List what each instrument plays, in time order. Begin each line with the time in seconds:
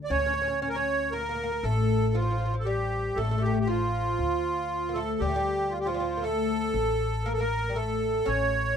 Already playing: cello section D2
0.04 accordion D5
0.10 upright bass D2, oud C#4, accordion C#5
0.20 oud C#4
0.26 oud C#4
0.34 oud C#4
0.42 oud C#4
0.48 oud C#4
0.61 oud C#4, accordion C#5
0.69 accordion A#4
0.75 oud C#4, accordion C#5
1.11 oud A#3, accordion A#4
1.21 oud A#3
1.29 oud A#3
1.35 oud A#3
1.43 oud A#3
1.52 oud A#3
1.63 upright bass A1, oud A3, accordion A4
2.14 oud F3, accordion F4
2.22 oud F3
2.31 oud F3
2.38 oud F3
2.46 oud F3
2.54 oud F3
2.59 accordion A4
2.65 oud G3, accordion G4
3.15 upright bass A1, oud A3, accordion A4
3.25 oud A3
3.31 oud A3
3.38 oud A3, accordion G4
3.46 oud A3
3.54 oud A3
3.60 accordion G4
3.67 oud F3, accordion F4
4.19 upright bass D2
4.89 oud A#3
4.94 oud A3, accordion A4
5.20 upright bass D2, oud G3, accordion G4
5.29 oud A3
5.36 oud G3
5.71 accordion F4
5.80 accordion G4
5.85 oud F3, accordion F4
5.94 oud G3
6.00 oud F3
6.17 oud A#3
6.22 oud A3, accordion A4
6.74 upright bass A1
7.25 oud A#3, accordion A#4
7.33 accordion A4
7.39 oud A#3, accordion A#4
7.69 oud G3
7.75 oud A3, accordion A4
8.26 upright bass A1, oud C#4, accordion C#5